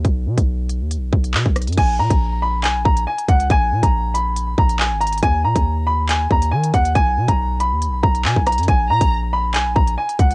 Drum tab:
CC |--------------------------------|x-------------------------------|--------------------------------|--------------------------------|
HH |x-----x-----x---x-----x-----xxxx|x-----x---------x-----x---x-x-x-|x-----x-----x---x-----x-----xxxx|x-----x---------x-----x---x-x-x-|
CP |------------------------x-------|----------------x---------------|------------------------x-------|----------------x---------------|
SD |----------------------------r---|--------------------------------|--------------------------------|--------------------------------|
BD |o-----o-------------o-----o-----|o-----o-------------o-------o---|o-----o-------------o-----------|o-----o-------------o-------o---|

CC |--------------------------------|--------------------------------|
HH |x-----x-----x---x-----x-----xxxx|x-----x---------x-----x---x-x-x-|
CP |------------------------x-------|----------------x---------------|
SD |----------------------------r---|--------------------------------|
BD |o-----o-------------o-----o-----|o-----o-------------o-------o---|